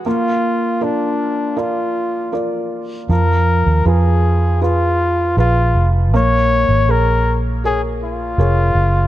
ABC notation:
X:1
M:4/4
L:1/16
Q:1/4=79
K:Bbphr
V:1 name="Felt piano"
B,4 [FB=d]4 [FBd]4 [FBd]4 | F,4 [FAc]4 [FAc]4 [FAc]4 | B,4 [ABd]4 [ABd]4 [ABd]4 |]
V:2 name="Flugelhorn"
F4 =D4 F4 z4 | B4 A4 F4 F3 z | d4 B2 z2 A2 F6 |]
V:3 name="Fingered electric bass" clef=bass
z16 | F,,3 E,, F,,8 B,,,2 F,,,2 | B,,,3 A,,, B,,,8 F,,,2 G,,,2 |]